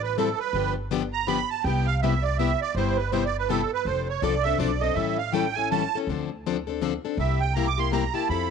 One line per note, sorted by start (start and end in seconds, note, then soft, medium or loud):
0.00 0.31 A1 loud
0.00 0.17 B4 medium
0.18 0.29 E3 loud
0.18 0.28 G3 loud
0.18 0.29 C4 loud
0.18 0.29 E4 loud
0.18 0.39 A4 medium
0.18 0.29 A4 loud
0.39 0.74 B4 loud
0.53 1.42 G1 medium
0.53 0.75 D3 medium
0.53 0.75 F3 medium
0.53 0.75 B3 medium
0.53 0.75 D4 medium
0.53 0.75 G4 medium
0.91 1.02 D3 medium
0.91 1.02 F3 loud
0.91 1.02 B3 loud
0.91 1.02 D4 loud
0.91 1.03 G4 loud
1.13 1.27 A#5 loud
1.27 1.38 D3 loud
1.27 1.38 F3 loud
1.27 1.39 B3 loud
1.27 1.39 D4 loud
1.27 1.39 G4 loud
1.27 1.49 B5 loud
1.50 1.64 A5 medium
1.64 2.53 C2 loud
1.64 1.86 C3 medium
1.64 1.86 G3 medium
1.64 1.86 B3 medium
1.64 1.86 E4 medium
1.64 1.87 G4 medium
1.64 1.86 G5 medium
1.86 2.00 F5 loud
2.02 2.13 C3 loud
2.02 2.14 G3 medium
2.02 2.14 B3 medium
2.02 2.14 E4 loud
2.02 2.14 G4 loud
2.02 2.24 E5 medium
2.23 2.37 D5 loud
2.38 2.50 C3 medium
2.38 2.50 G3 medium
2.38 2.50 B3 medium
2.38 2.50 E4 loud
2.38 2.51 G4 loud
2.38 2.60 E5 loud
2.62 2.75 D5 loud
2.75 3.63 G1 medium
2.75 2.97 C3 medium
2.75 2.97 G3 medium
2.75 2.97 B3 medium
2.75 2.97 E4 medium
2.75 2.97 G4 medium
2.75 2.97 C5 medium
2.97 3.11 B4 medium
3.11 3.23 C3 loud
3.11 3.23 G3 loud
3.11 3.24 B3 loud
3.11 3.24 E4 loud
3.11 3.24 G4 loud
3.11 3.24 C5 medium
3.25 3.37 D5 medium
3.39 3.50 B4 loud
3.49 3.60 C3 loud
3.49 3.61 G3 medium
3.49 3.61 B3 loud
3.49 3.61 E4 loud
3.49 3.61 G4 loud
3.49 3.71 A4 medium
3.73 3.87 B4 loud
3.85 4.15 F1 medium
3.85 4.07 F3 medium
3.85 4.07 C4 medium
3.85 4.07 D4 medium
3.85 4.08 A4 medium
3.85 4.08 C5 medium
4.09 4.23 C#5 medium
4.22 4.54 C2 medium
4.22 4.34 F3 medium
4.22 4.34 C4 medium
4.22 4.34 D4 loud
4.22 4.34 A4 loud
4.22 4.44 D5 medium
4.43 4.59 A4 medium
4.43 4.58 E5 loud
4.47 4.58 C4 medium
4.47 4.59 D4 medium
4.58 4.91 B1 medium
4.58 4.70 F3 medium
4.58 4.70 C4 medium
4.58 4.71 D4 loud
4.58 4.71 A4 loud
4.58 4.81 D5 medium
4.80 4.95 C4 medium
4.80 4.96 D4 medium
4.80 4.95 A4 medium
4.80 4.95 D#5 loud
4.94 5.85 A1 medium
4.94 5.17 E3 medium
4.94 5.17 G3 medium
4.94 5.17 C#4 medium
4.94 5.17 E4 medium
4.94 5.17 A4 medium
4.94 5.17 E5 medium
5.18 5.33 F5 medium
5.32 5.44 E3 medium
5.32 5.45 G3 loud
5.32 5.45 C#4 medium
5.32 5.45 E4 loud
5.32 5.45 A4 loud
5.32 5.55 G5 medium
5.54 5.71 E4 medium
5.54 5.70 A4 medium
5.54 5.69 G#5 loud
5.58 5.71 C#4 soft
5.71 5.82 E3 loud
5.71 5.82 G3 loud
5.71 5.82 C#4 medium
5.71 5.82 E4 loud
5.71 5.83 A4 loud
5.71 5.99 A5 loud
5.95 6.09 C#4 medium
5.95 6.08 E4 medium
5.95 6.08 A4 medium
6.07 6.96 D2 medium
6.07 6.29 D3 medium
6.07 6.29 F3 medium
6.07 6.30 C4 medium
6.07 6.29 D4 medium
6.07 6.29 A4 medium
6.46 6.56 D3 medium
6.46 6.56 F3 loud
6.46 6.57 C4 loud
6.46 6.57 D4 loud
6.46 6.57 A4 loud
6.67 6.81 C4 medium
6.67 6.81 D4 medium
6.67 6.81 A4 medium
6.81 6.93 D3 loud
6.81 6.92 F3 medium
6.81 6.93 C4 loud
6.81 6.93 D4 loud
6.81 6.93 A4 loud
7.05 7.19 C4 medium
7.05 7.18 D4 medium
7.05 7.18 A4 medium
7.17 8.06 C2 medium
7.17 7.39 C3 medium
7.17 7.40 G3 medium
7.17 7.40 A#3 medium
7.17 7.40 E4 medium
7.17 7.40 G4 medium
7.17 7.41 E5 medium
7.40 7.54 G5 medium
7.54 7.66 C3 loud
7.54 7.67 G3 medium
7.54 7.67 A#3 loud
7.54 7.67 E4 medium
7.54 7.67 G4 loud
7.54 7.67 A#5 medium
7.67 7.79 D6 loud
7.78 7.92 A#3 medium
7.78 7.92 E4 medium
7.78 7.92 G4 medium
7.78 7.91 C6 medium
7.92 8.03 C3 medium
7.92 8.03 G3 medium
7.92 8.04 A#3 medium
7.92 8.04 E4 loud
7.92 8.04 G4 loud
7.92 8.14 A#5 medium
8.14 8.29 A#3 medium
8.14 8.28 E4 medium
8.14 8.28 G4 medium
8.14 8.28 A5 loud
8.29 8.50 F2 medium
8.29 8.50 F3 medium
8.29 8.50 C4 medium
8.29 8.50 E4 medium
8.29 8.50 A4 medium
8.29 8.50 B5 medium